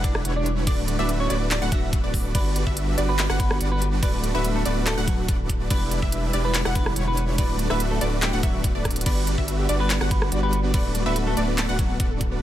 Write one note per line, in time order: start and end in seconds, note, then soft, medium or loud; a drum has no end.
0.00 0.23 E1 loud
0.00 2.31 D3 medium
0.00 0.23 G3 loud
0.00 0.65 G3 medium
0.00 0.23 D4 medium
0.00 0.21 D4 medium
0.00 0.23 E4 medium
0.00 0.65 E4 medium
0.00 0.23 B4 medium
0.00 0.23 F#5 loud
0.04 0.21 D5 medium
0.04 kick loud
0.04 closed hi-hat medium
0.15 cross-stick medium
0.25 0.69 E1 loud
0.25 0.65 G3 medium
0.25 0.65 D4 medium
0.25 0.65 E4 medium
0.25 0.65 B4 medium
0.25 0.65 C#5 medium
0.25 closed hi-hat medium
0.36 0.53 D4 medium
0.36 0.53 D5 loud
0.46 closed hi-hat medium
0.67 0.97 D1 loud
0.67 0.96 A3 loud
0.67 5.66 B3 medium
0.67 0.84 D4 medium
0.67 0.96 D4 medium
0.67 2.33 F#4 medium
0.67 0.96 F#4 medium
0.67 0.96 B4 medium
0.67 0.96 D5 loud
0.67 0.84 D5 medium
0.67 kick loud
0.67 closed hi-hat medium
0.67 crash soft
0.88 closed hi-hat medium
0.99 1.28 D1 loud
0.99 1.28 A3 medium
0.99 1.10 D4 medium
0.99 1.28 D4 medium
0.99 1.28 F#4 medium
0.99 1.28 B4 medium
0.99 1.10 D5 medium
0.99 1.28 E5 loud
1.09 closed hi-hat medium
1.20 1.36 C#4 medium
1.20 1.36 C#5 loud
1.30 1.60 D1 loud
1.30 1.59 A3 medium
1.30 1.59 D4 medium
1.30 1.59 F#4 medium
1.30 1.59 B4 medium
1.30 1.59 D5 medium
1.30 closed hi-hat medium
1.51 1.63 D4 medium
1.51 1.63 D5 medium
1.51 clap loud
1.51 closed hi-hat medium
1.51 crash soft
1.62 1.70 D1 loud
1.62 1.70 A3 loud
1.62 1.70 D4 medium
1.62 1.70 F#4 medium
1.62 1.70 B4 medium
1.62 1.70 F#5 loud
1.72 2.02 D1 loud
1.72 2.01 A3 loud
1.72 2.01 D4 medium
1.72 2.01 F#4 medium
1.72 1.89 F#4 medium
1.72 2.01 B4 medium
1.72 2.01 E5 loud
1.72 1.89 F#5 medium
1.72 kick loud
1.72 closed hi-hat medium
1.93 kick loud
1.93 closed hi-hat medium
2.04 2.36 D1 loud
2.04 2.32 A3 medium
2.04 2.32 D4 medium
2.04 2.32 F#4 medium
2.04 2.32 B4 medium
2.04 2.32 D5 medium
2.14 kick medium
2.14 open hi-hat medium
2.35 2.65 G1 loud
2.35 2.64 G3 loud
2.35 4.01 G3 medium
2.35 2.57 B3 medium
2.35 2.64 D4 medium
2.35 2.64 F#4 medium
2.35 4.01 F#4 medium
2.35 2.64 B4 medium
2.35 2.57 B4 loud
2.35 2.64 D5 loud
2.35 kick loud
2.35 closed hi-hat medium
2.35 crash soft
2.56 closed hi-hat medium
2.67 2.96 G1 medium
2.67 2.95 G3 medium
2.67 2.95 D4 medium
2.67 2.95 F#4 medium
2.67 2.95 B4 medium
2.67 2.95 E5 loud
2.67 kick medium
2.77 closed hi-hat medium
2.98 3.28 G1 loud
2.98 3.27 G3 medium
2.98 3.27 D4 medium
2.98 3.27 F#4 medium
2.98 3.27 B4 medium
2.98 3.27 D5 medium
2.98 closed hi-hat medium
3.09 3.25 B3 medium
3.09 3.25 B4 medium
3.19 clap loud
3.19 closed hi-hat medium
3.19 crash soft
3.30 3.59 G1 loud
3.30 3.58 G3 loud
3.30 3.58 D4 medium
3.30 3.58 F#4 medium
3.30 3.58 B4 medium
3.30 3.58 F#5 loud
3.30 cross-stick medium
3.40 3.57 B3 medium
3.40 3.57 B4 medium
3.40 kick loud
3.40 closed hi-hat medium
3.51 cross-stick medium
3.61 4.01 G1 loud
3.61 4.00 G3 medium
3.61 4.00 D4 medium
3.61 4.00 F#4 medium
3.61 4.00 B4 medium
3.61 4.00 D5 medium
3.61 closed hi-hat medium
3.72 3.88 B3 medium
3.72 3.88 B4 loud
3.82 closed hi-hat medium
4.03 4.32 D1 loud
4.03 5.69 D3 medium
4.03 4.32 A3 loud
4.03 4.19 B3 medium
4.03 4.32 D4 medium
4.03 5.69 F#4 medium
4.03 4.32 F#4 medium
4.03 4.20 B4 medium
4.03 4.32 B4 medium
4.03 4.32 D5 loud
4.03 kick loud
4.03 closed hi-hat medium
4.03 crash soft
4.24 closed hi-hat medium
4.34 4.64 D1 loud
4.34 4.63 A3 medium
4.34 4.45 B3 medium
4.34 4.63 D4 medium
4.34 4.63 F#4 medium
4.34 4.45 B4 medium
4.34 4.63 B4 medium
4.34 4.63 E5 loud
4.44 closed hi-hat medium
4.55 4.72 A3 medium
4.55 4.72 A4 loud
4.65 4.95 D1 loud
4.65 4.95 A3 medium
4.65 4.95 D4 medium
4.65 4.95 F#4 medium
4.65 4.95 B4 medium
4.65 4.95 D5 medium
4.65 closed hi-hat medium
4.86 4.98 A3 medium
4.86 4.98 A4 medium
4.86 clap loud
4.86 closed hi-hat medium
4.86 crash soft
4.97 5.27 D1 loud
4.97 5.26 A3 loud
4.97 5.26 D4 medium
4.97 5.26 F#4 medium
4.97 5.26 B4 medium
4.97 5.26 F#5 loud
5.07 5.24 F#3 medium
5.07 5.24 F#4 medium
5.07 kick loud
5.07 closed hi-hat medium
5.28 5.68 D1 loud
5.28 5.68 A3 medium
5.28 5.68 D4 medium
5.28 5.68 F#4 medium
5.28 5.68 B4 medium
5.28 5.68 D5 medium
5.28 kick loud
5.28 closed hi-hat medium
5.49 kick medium
5.49 closed hi-hat medium
5.70 6.00 E1 loud
5.70 7.37 D3 medium
5.70 6.00 G3 loud
5.70 7.37 G3 medium
5.70 5.93 B3 medium
5.70 6.00 D4 medium
5.70 6.00 E4 medium
5.70 7.37 E4 medium
5.70 6.00 B4 medium
5.70 5.93 B4 loud
5.70 6.00 D5 loud
5.70 kick loud
5.70 closed hi-hat medium
5.70 crash soft
5.91 closed hi-hat medium
6.02 6.31 E1 loud
6.02 6.31 G3 medium
6.02 6.31 D4 medium
6.02 6.31 E4 medium
6.02 6.31 B4 medium
6.02 6.31 E5 loud
6.02 kick medium
6.12 closed hi-hat medium
6.33 6.63 E1 loud
6.33 6.63 G3 medium
6.33 6.63 D4 medium
6.33 6.63 E4 medium
6.33 6.63 B4 medium
6.33 6.63 D5 medium
6.33 closed hi-hat medium
6.44 6.61 B3 medium
6.44 6.61 B4 medium
6.54 clap loud
6.54 closed hi-hat medium
6.54 crash soft
6.65 6.94 E1 loud
6.65 6.94 G3 loud
6.65 6.94 D4 medium
6.65 6.94 E4 medium
6.65 6.94 B4 medium
6.65 6.94 F#5 loud
6.65 cross-stick medium
6.75 6.92 B3 medium
6.75 6.92 B4 loud
6.75 kick loud
6.75 closed hi-hat medium
6.86 cross-stick medium
6.96 7.40 E1 loud
6.96 7.36 G3 medium
6.96 7.36 D4 medium
6.96 7.36 E4 medium
6.96 7.36 B4 medium
6.96 7.36 C#5 medium
6.96 closed hi-hat medium
7.07 7.24 B3 medium
7.07 7.24 B4 loud
7.17 closed hi-hat medium
7.38 7.68 D1 loud
7.38 9.05 D3 medium
7.38 7.68 A3 loud
7.38 7.55 B3 medium
7.38 10.71 B3 medium
7.38 7.68 D4 medium
7.38 7.68 F#4 medium
7.38 9.05 F#4 medium
7.38 7.68 B4 medium
7.38 7.55 B4 loud
7.38 7.68 D5 loud
7.38 kick loud
7.38 closed hi-hat medium
7.38 crash soft
7.59 closed hi-hat medium
7.70 7.99 D1 loud
7.70 7.99 A3 medium
7.70 7.81 B3 medium
7.70 7.99 D4 medium
7.70 7.99 F#4 medium
7.70 7.99 B4 medium
7.70 7.81 B4 medium
7.70 7.99 E5 loud
7.70 cross-stick medium
7.80 closed hi-hat medium
7.91 8.08 A3 medium
7.91 8.08 A4 loud
8.01 8.31 D1 loud
8.01 8.31 A3 medium
8.01 8.31 D4 medium
8.01 8.31 F#4 medium
8.01 8.31 B4 medium
8.01 8.31 D5 medium
8.01 closed hi-hat medium
8.22 8.34 G3 medium
8.22 8.34 G4 medium
8.22 clap loud
8.22 closed hi-hat medium
8.22 crash soft
8.33 8.41 D1 loud
8.33 8.41 A3 loud
8.33 8.41 D4 medium
8.33 8.41 F#4 medium
8.33 8.41 B4 medium
8.33 8.41 F#5 loud
8.43 8.73 D1 loud
8.43 8.60 F#3 medium
8.43 8.72 A3 loud
8.43 8.72 D4 medium
8.43 8.72 F#4 medium
8.43 8.60 F#4 medium
8.43 8.72 B4 medium
8.43 8.72 E5 loud
8.43 kick loud
8.43 closed hi-hat medium
8.64 kick loud
8.64 closed hi-hat medium
8.75 9.04 D1 loud
8.75 9.04 A3 medium
8.75 9.04 D4 medium
8.75 9.04 F#4 medium
8.75 9.04 B4 medium
8.75 9.04 D5 medium
8.85 kick medium
8.85 cross-stick medium
8.85 closed hi-hat medium
8.91 closed hi-hat medium
8.96 closed hi-hat medium
9.01 closed hi-hat medium
9.06 9.36 G1 loud
9.06 10.72 G3 medium
9.06 9.35 G3 loud
9.06 9.28 B3 medium
9.06 9.17 B3 medium
9.06 9.35 D4 medium
9.06 10.72 F#4 medium
9.06 9.35 F#4 medium
9.06 9.28 B4 loud
9.06 9.36 B4 medium
9.06 9.35 D5 loud
9.06 kick loud
9.06 closed hi-hat medium
9.06 crash medium
9.27 closed hi-hat medium
9.38 9.67 G1 loud
9.38 9.67 G3 medium
9.38 9.42 B3 medium
9.38 9.67 D4 medium
9.38 9.67 F#4 medium
9.38 9.67 B4 medium
9.38 9.67 E5 loud
9.38 kick medium
9.48 9.53 F#4 medium
9.48 closed hi-hat medium
9.59 9.63 G4 loud
9.69 9.99 G1 loud
9.69 9.98 G3 medium
9.69 9.98 D4 medium
9.69 9.98 F#4 medium
9.69 9.98 B4 medium
9.69 9.98 D5 medium
9.69 closed hi-hat medium
9.80 9.97 B3 medium
9.80 9.87 B3 loud
9.80 9.96 B4 medium
9.90 10.01 B3 medium
9.90 clap loud
9.90 closed hi-hat medium
9.90 crash soft
10.01 10.30 G1 loud
10.01 10.30 G3 loud
10.01 10.30 D4 medium
10.01 10.30 F#4 medium
10.01 10.30 B4 medium
10.01 10.30 F#5 loud
10.01 cross-stick medium
10.11 10.28 B3 medium
10.11 10.28 B4 loud
10.11 kick loud
10.11 closed hi-hat medium
10.22 10.26 B3 medium
10.22 cross-stick medium
10.32 10.76 G1 loud
10.32 10.72 G3 medium
10.32 10.72 D4 medium
10.32 10.72 F#4 medium
10.32 10.37 F#4 medium
10.32 10.72 B4 medium
10.32 10.72 D5 medium
10.32 closed hi-hat medium
10.43 10.59 B3 medium
10.43 10.47 G4 loud
10.43 10.59 B4 loud
10.53 closed hi-hat medium
10.64 10.71 B3 loud
10.74 11.04 D1 loud
10.74 12.42 D3 medium
10.74 11.03 A3 loud
10.74 10.91 B3 medium
10.74 12.40 B3 medium
10.74 11.03 D4 medium
10.74 11.03 F#4 medium
10.74 12.40 F#4 medium
10.74 11.03 B4 medium
10.74 10.91 B4 loud
10.74 11.03 D5 loud
10.74 kick loud
10.74 closed hi-hat medium
10.74 crash soft
10.95 closed hi-hat medium
11.06 11.35 D1 loud
11.06 11.35 A3 medium
11.06 11.17 B3 medium
11.06 11.10 B3 medium
11.06 11.35 D4 medium
11.06 11.35 F#4 medium
11.06 11.35 B4 medium
11.06 11.17 B4 medium
11.06 11.35 E5 loud
11.16 11.20 F#4 medium
11.16 closed hi-hat medium
11.27 11.43 A3 medium
11.27 11.31 A4 loud
11.27 11.43 A4 loud
11.37 11.67 D1 loud
11.37 11.66 A3 medium
11.37 11.66 D4 medium
11.37 11.66 F#4 medium
11.37 11.66 B4 medium
11.37 11.66 D5 medium
11.37 closed hi-hat medium
11.48 11.55 B3 loud
11.58 11.69 A3 medium
11.58 11.68 B3 medium
11.58 11.69 A4 medium
11.58 clap loud
11.58 closed hi-hat medium
11.58 crash soft
11.69 11.98 D1 loud
11.69 11.98 A3 loud
11.69 11.97 D4 medium
11.69 11.97 F#4 medium
11.69 11.98 B4 medium
11.69 11.97 F#5 loud
11.79 11.96 F#3 medium
11.79 11.96 F#4 loud
11.79 kick loud
11.79 closed hi-hat medium
11.90 11.94 B3 medium
12.00 12.40 D1 loud
12.00 12.39 A3 medium
12.00 12.39 D4 medium
12.00 12.04 F#4 medium
12.00 12.39 F#4 medium
12.00 12.39 B4 medium
12.00 12.39 D5 medium
12.00 kick loud
12.00 closed hi-hat medium
12.11 12.15 A4 loud
12.21 kick medium
12.21 closed hi-hat medium
12.32 12.39 B3 loud